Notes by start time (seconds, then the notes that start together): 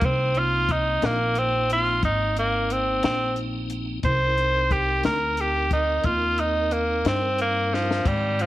0.01 C2 A#3 C4 D#4, kick, closed hi-hat
0.35 F4, closed hi-hat
0.69 D#4, kick, closed hi-hat
1.02 A#1 A#3, snare, closed hi-hat
1.35 C4, closed hi-hat
1.70 F4, closed hi-hat
2.03 G#1 D#4, kick, closed hi-hat
2.37 A#3, closed hi-hat
2.70 C4, closed hi-hat
3.03 A#1 C4, snare, closed hi-hat
3.36 closed hi-hat
3.70 closed hi-hat
4.03 C2 C#4 E4 A#4 C5, kick, closed hi-hat
4.37 C4 D#4 A#4, closed hi-hat
4.71 G4, kick, closed hi-hat
5.04 D2 A#4, snare, closed hi-hat
5.37 G4, closed hi-hat
5.71 D#4, kick, closed hi-hat
6.04 D#2 F4, kick, closed hi-hat
6.38 D#4, closed hi-hat
6.71 A#3, closed hi-hat
7.05 G2 C4, snare, closed hi-hat
7.38 A#3, closed hi-hat
7.74 F3, snare
7.91 snare
8.05 G#2 D#3 G3 C4 G5, kick, closed hi-hat, crash
8.39 F3, closed hi-hat